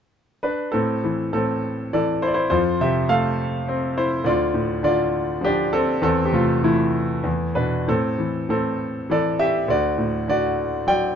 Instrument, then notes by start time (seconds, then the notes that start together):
grand piano
0.43 D4 B4
0.72 A2 C4 A4
1.04 E3
1.33 A2 C4 A4
1.93 E3 A4 D5
2.22 E4 C5
2.27 D5
2.34 E4 C5
2.50 F2 F4 C5
2.81 C3 G4 E5
3.09 A3 A4 F5
3.68 C4
3.98 E4 C5
4.24 D2 F4 D5
4.54 A2
4.83 D3 F4 D5
5.41 F3 G4
5.45 D4
5.73 C4 A4
6.02 E2 C4 A4
6.25 G4
6.32 C3 A3 F4
6.64 E3 A3 E4
7.24 E2
7.55 B2 D4 B4
7.88 A2 C4 A4
8.18 E3
8.49 A2 C4 A4
9.10 E3 A4 D5
9.39 G4 E5
9.68 D2 F#4 D5
9.98 A2
10.28 D3 F#4 D5
10.87 F#3 D5 G5